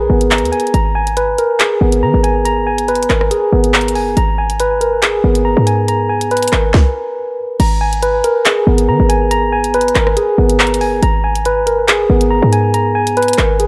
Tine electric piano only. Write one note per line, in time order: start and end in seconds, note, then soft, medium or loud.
0.00 0.74 G#4 medium
0.00 0.74 A#4 medium
0.00 0.74 B4 loud
0.00 0.51 G#5 medium
0.00 0.30 A#5 loud
0.10 0.74 B3 medium
0.31 0.73 A#5 loud
0.52 0.74 G#5 medium
0.74 2.02 A#5 loud
0.95 2.22 G#5 loud
1.17 2.45 B4 medium
1.39 2.67 A#4 medium
1.60 2.88 G#4 medium
1.81 3.10 B3 medium
2.03 2.44 A#5 loud
2.24 2.65 G#5 medium
2.45 3.73 A#5 loud
2.67 3.94 G#5 medium
2.89 4.17 B4 medium
3.10 4.17 A#4 medium
3.31 4.17 G#4 medium
3.53 4.17 B3 medium
3.75 4.16 A#5 medium
3.95 4.17 G#5 medium
4.17 5.44 A#5 loud
4.38 5.66 G#5 medium
4.60 5.88 B4 medium
4.81 6.10 A#4 medium
5.03 6.31 G#4 medium
5.24 6.53 B3 medium
5.45 5.87 A#5 loud
5.67 6.08 G#5 medium
5.88 7.17 A#5 loud
6.09 7.38 G#5 medium
6.31 7.60 B4 loud
6.52 7.60 A#4 medium
7.60 8.87 A#5 loud
7.81 9.08 G#5 medium
8.03 9.31 B4 medium
8.24 9.53 A#4 medium
8.45 9.74 G#4 medium
8.67 9.95 B3 medium
8.89 9.30 A#5 loud
9.09 9.51 G#5 medium
9.31 10.59 A#5 loud
9.52 10.80 G#5 medium
9.74 11.03 B4 loud
10.17 11.02 G#4 medium
10.38 11.03 B3 medium
10.60 11.01 A#5 loud
10.81 11.03 G#5 medium
11.03 12.29 A#5 loud
11.24 12.51 G#5 medium
11.46 12.74 B4 loud
11.67 12.95 A#4 medium
11.88 13.17 G#4 loud
12.10 13.38 B3 medium
12.31 12.73 A#5 loud
12.52 12.94 G#5 medium
12.74 13.67 A#5 loud
12.95 13.67 G#5 medium
13.17 13.67 B4 loud
13.38 13.67 A#4 medium
13.60 13.67 G#4 medium